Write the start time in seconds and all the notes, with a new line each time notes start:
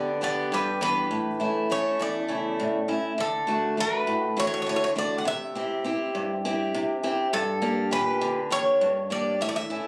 Already playing: D3 B3 D5
0.21 B3 D4 G4 D5
0.52 G2 G3 B4
0.81 E3 B3 D4 G4 B4
1.11 A2
1.40 A3 C#4 E4
1.70 A3 C#4 E4 C#5
1.99 E2 A3 D5
2.28 C#3 A3 E4
2.60 A2
2.88 A3 C#4 E4
3.18 D3 A4
3.47 A3 D4 F#4
3.77 A3 D4 F#4 B4
4.07 A2
4.37 A3 D4 F#4 C#5
4.47 C#5
4.54 C#5
4.62 C#5
4.67 D3 C#5
4.76 C#5
4.84 C#5
4.95 A3 D4 F#4 D5
5.18 F#5
5.25 C3 E5
5.55 C4 E4 G4
5.84 C4 E4 G4
6.15 G2
6.45 C4 E4 G4
6.74 C3
7.03 C4 E4 G4
7.33 G2 A4
7.62 A#3 D4 G4
7.91 A#2 D4 G4 B4
8.21 D3
8.50 A#3 D4 G4 C#5
8.81 G2
9.10 A#3 D4 G4 D5
9.41 A2 E5
9.49 D5
9.56 E5
9.70 A3 C#4 E4